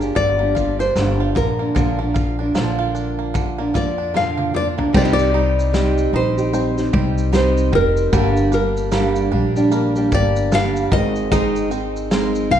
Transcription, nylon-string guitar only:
0.00 0.16 G#4 medium
0.16 0.80 D5 loud
0.80 1.37 C5 medium
1.37 2.52 A#4 medium
3.76 4.16 D5 medium
4.17 4.53 F5 medium
4.56 4.67 D5 loud
4.97 5.04 D5 loud
5.05 5.12 D#5 medium
5.13 6.11 D5 loud
6.16 7.34 C5 medium
7.35 7.71 C5 medium
7.75 8.50 A#4 medium
8.54 9.29 A#4 medium
10.14 10.54 D5 loud
10.55 10.93 F5 loud
10.93 11.29 D#5 loud
11.32 12.51 D#5 medium
12.51 12.60 F5 medium

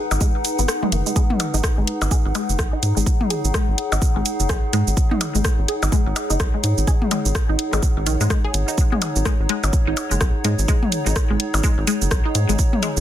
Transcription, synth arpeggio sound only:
0.21 0.27 G#3 loud
0.59 0.65 B3 medium
0.83 0.87 G#3 loud
0.92 0.98 A#3 medium
1.06 1.09 G#3 medium
1.16 1.22 G#3 loud
1.54 1.60 D#4 medium
1.78 1.84 G#3 medium
2.11 2.20 G#4 medium
2.35 2.41 G#3 loud
2.73 2.79 D#4 medium
2.97 3.03 G#3 medium
3.30 3.39 G#4 medium
3.54 3.60 G#3 loud
3.92 3.98 D#4 medium
4.16 4.22 G#3 medium
4.49 4.58 G#4 medium
4.73 4.79 G#3 loud
5.11 5.17 D#4 medium
5.35 5.41 G#3 medium
5.68 5.77 G#4 medium
5.92 5.98 G#3 loud
6.30 6.36 D#4 medium
6.54 6.60 G#3 medium
6.87 6.96 G#4 medium
7.11 7.17 G#3 loud
7.49 7.55 D#4 medium
7.73 7.79 G#3 medium
8.06 8.15 D#3 loud
8.21 8.23 G#3 loud
8.30 8.36 G#3 loud
8.44 8.49 G#4 loud
8.68 8.71 D#4 medium
8.92 8.98 G#3 medium
9.25 9.29 G#3 loud
9.49 9.55 G#3 loud
9.87 9.93 D#4 medium
10.11 10.17 G#3 medium
10.44 10.48 G#3 loud
10.68 10.74 G#3 loud
11.06 11.13 D#4 medium
11.30 11.36 G#3 medium
11.64 11.67 G#3 loud
11.87 11.93 G#3 loud
12.25 12.32 D#4 medium
12.49 12.55 G#3 medium
12.83 12.86 G#3 loud

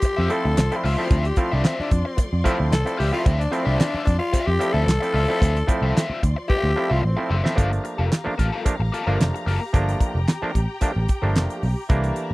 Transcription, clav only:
0.03 0.10 C4 soft
0.03 0.10 E4 soft
0.29 0.57 F3 loud
0.29 0.57 A3 medium
0.29 0.57 C4 medium
0.29 0.58 E4 loud
0.71 0.89 F3 medium
0.71 0.89 A3 medium
0.71 0.89 C4 medium
0.71 0.89 E4 medium
0.98 1.25 F3 medium
0.98 1.25 A3 medium
0.98 1.26 C4 medium
0.98 1.26 E4 medium
1.37 1.74 F3 medium
1.37 1.74 A3 medium
1.37 1.74 C4 medium
1.37 1.75 E4 medium
1.91 1.98 C4 soft
1.91 1.99 E4 soft
2.18 2.25 C4 soft
2.18 2.26 E4 soft
2.44 2.72 F3 loud
2.44 2.72 A3 loud
2.44 2.72 C4 medium
2.44 2.72 E4 loud
2.85 3.03 F3 medium
2.85 3.04 A3 medium
2.85 3.04 C4 medium
2.85 3.04 E4 medium
3.12 3.40 F3 medium
3.12 3.40 A3 medium
3.12 3.40 C4 medium
3.12 3.41 E4 medium
3.51 3.89 F3 loud
3.51 3.89 A3 medium
3.51 3.89 C4 medium
3.51 3.90 E4 loud
4.06 4.14 C4 soft
4.06 4.14 E4 soft
4.33 4.40 C4 soft
4.33 4.41 E4 soft
4.59 4.87 F3 medium
4.59 4.87 A3 medium
4.59 4.88 C4 medium
4.59 4.88 E4 loud
5.02 5.20 F3 medium
5.02 5.20 A3 medium
5.02 5.20 C4 medium
5.02 5.20 E4 medium
5.28 5.56 F3 medium
5.28 5.56 A3 medium
5.28 5.57 C4 medium
5.28 5.57 E4 medium
5.67 6.05 F3 loud
5.67 6.05 A3 loud
5.67 6.05 C4 loud
5.67 6.05 E4 loud
6.22 6.29 C4 soft
6.22 6.30 E4 soft
6.49 6.56 C4 soft
6.49 6.57 E4 soft
6.76 7.04 F3 loud
6.76 7.04 A3 medium
6.76 7.04 C4 medium
6.76 7.04 E4 loud
7.17 7.35 F3 medium
7.17 7.35 A3 medium
7.17 7.36 C4 medium
7.17 7.36 E4 medium
7.44 7.54 F3 medium
7.44 7.55 A3 medium
7.44 7.58 C4 medium
7.44 7.58 E4 medium
7.56 8.03 F3 medium
7.56 8.03 A3 medium
7.56 8.03 A#3 medium
7.56 8.03 D4 loud
8.24 8.34 F3 medium
8.24 8.34 A3 medium
8.24 8.34 A#3 medium
8.24 8.35 D4 loud
8.39 8.46 D4 soft
8.65 8.75 F3 medium
8.65 8.75 A3 medium
8.65 8.75 A#3 medium
8.65 8.76 D4 loud
8.81 8.87 D4 soft
9.06 9.52 F3 medium
9.06 9.52 A3 medium
9.06 9.52 A#3 medium
9.06 9.53 D4 medium
9.73 10.20 F3 loud
9.73 10.20 A3 medium
9.73 10.20 A#3 loud
9.73 10.20 D4 loud
10.42 10.51 F3 loud
10.42 10.51 A3 medium
10.42 10.51 A#3 medium
10.42 10.51 D4 loud
10.81 10.91 F3 medium
10.81 10.92 A3 medium
10.81 10.92 A#3 medium
10.81 10.92 D4 loud
10.97 11.03 D4 soft
11.22 11.68 F3 medium
11.22 11.68 A3 medium
11.22 11.68 A#3 medium
11.22 11.68 D4 medium
11.89 12.34 E3 loud
11.89 12.34 A3 medium
11.89 12.34 A#3 loud
11.89 12.34 D4 loud

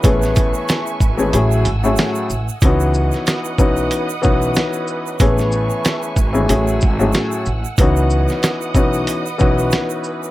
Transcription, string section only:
0.00 1.29 B4 medium
0.05 1.32 E5 medium
0.05 2.60 G#5 medium
0.05 1.32 C#6 medium
1.33 2.61 A3 medium
1.33 2.61 F#5 medium
1.33 2.61 E6 medium
2.62 6.45 B4 medium
2.62 5.18 D#5 medium
2.62 5.18 F#5 medium
2.62 5.18 D#6 medium
5.20 6.48 E5 medium
5.20 7.76 G#5 medium
5.20 6.48 C#6 medium
6.48 7.76 A3 medium
6.48 10.31 F#5 medium
6.48 7.77 E6 medium
7.79 10.31 B4 medium
7.79 10.31 D#5 medium
7.79 10.31 D#6 loud

